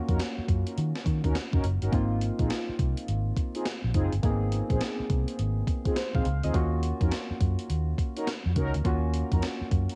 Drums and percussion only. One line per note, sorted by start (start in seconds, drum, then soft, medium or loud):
0.09 kick medium
0.09 closed hi-hat soft
0.20 snare loud
0.20 closed hi-hat medium
0.48 kick medium
0.48 closed hi-hat medium
0.67 closed hi-hat medium
0.78 closed hi-hat medium
0.96 snare medium
1.06 kick medium
1.06 closed hi-hat medium
1.24 kick medium
1.24 closed hi-hat medium
1.35 snare loud
1.35 closed hi-hat medium
1.53 kick loud
1.64 closed hi-hat medium
1.82 closed hi-hat soft
1.93 kick loud
1.93 closed hi-hat medium
2.21 closed hi-hat medium
2.39 kick medium
2.39 closed hi-hat medium
2.50 snare loud
2.50 closed hi-hat medium
2.79 kick medium
2.79 closed hi-hat medium
2.97 closed hi-hat medium
3.08 closed hi-hat medium
3.37 kick medium
3.37 closed hi-hat medium
3.55 closed hi-hat medium
3.66 snare loud
3.66 closed hi-hat medium
3.94 kick medium
3.94 closed hi-hat medium
4.13 closed hi-hat soft
4.23 kick loud
4.23 closed hi-hat medium
4.52 closed hi-hat medium
4.70 kick medium
4.70 closed hi-hat medium
4.81 snare loud
4.81 closed hi-hat medium
5.10 kick medium
5.10 closed hi-hat medium
5.28 closed hi-hat medium
5.39 closed hi-hat medium
5.67 kick medium
5.67 closed hi-hat medium
5.85 kick medium
5.85 closed hi-hat medium
5.96 snare loud
5.96 closed hi-hat medium
6.15 kick loud
6.25 closed hi-hat medium
6.43 closed hi-hat soft
6.54 kick loud
6.54 closed hi-hat medium
6.83 closed hi-hat medium
7.01 kick medium
7.01 closed hi-hat medium
7.11 snare loud
7.11 closed hi-hat medium
7.41 kick medium
7.41 closed hi-hat medium
7.59 closed hi-hat medium
7.70 closed hi-hat medium
7.98 kick medium
7.98 closed hi-hat medium
8.16 closed hi-hat soft
8.27 snare loud
8.27 closed hi-hat medium
8.56 kick medium
8.56 closed hi-hat medium
8.74 closed hi-hat soft
8.85 kick loud
8.85 closed hi-hat medium
9.14 closed hi-hat medium
9.32 kick medium
9.32 closed hi-hat medium
9.42 snare loud
9.42 closed hi-hat medium
9.71 kick medium
9.71 closed hi-hat medium
9.89 closed hi-hat medium